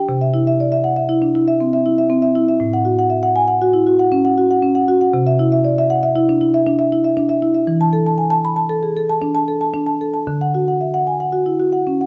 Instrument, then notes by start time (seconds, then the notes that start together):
marimba
0.09 C3
0.21 E5
0.34 E4
0.47 E5
0.60 D5
0.72 E5
0.84 F#5
0.96 E5
1.09 E4
1.22 D4
1.35 E4
1.48 E5
1.61 C4
1.73 E5
1.86 E4
1.98 E5
2.10 C4
2.22 E5
2.35 E4
2.48 E5
2.60 A2
2.73 F#5
2.85 F#4
2.99 F#5
3.10 E5
3.23 F#5
3.36 G#5
3.48 F#5
3.62 F#4
3.73 E4
3.87 F#4
3.99 F#5
4.12 C#4
4.25 F#5
4.38 F#4
4.51 F#5
4.63 C#4
4.75 F#5
4.88 F#4
5.01 F#5
5.13 C3
5.27 E5
5.39 E4
5.52 E5
5.65 D5
5.78 E5
5.90 F#5
6.03 E5
6.16 E4
6.29 D4
6.41 E4
6.54 E5
6.67 D4
6.79 E5
6.92 E4
7.04 E5
7.17 D4
7.29 E5
7.42 E4
7.54 E5
7.67 E3
7.81 A5
7.93 A4
8.06 A5
8.18 G#5
8.30 A5
8.45 B5
8.56 A5
8.69 A4
8.83 G#4
8.97 A4
9.09 A5
9.22 D4
9.35 A5
9.48 A4
9.61 A5
9.74 D4
9.86 A5
10.01 A4
10.14 A5
10.27 D3
10.41 F#5
10.54 F#4
10.68 F#5
10.81 E5
10.94 F#5
11.07 G#5
11.20 F#5
11.33 F#4
11.46 E4
11.60 F#4
11.73 F#5
11.87 C#4
12.01 F#5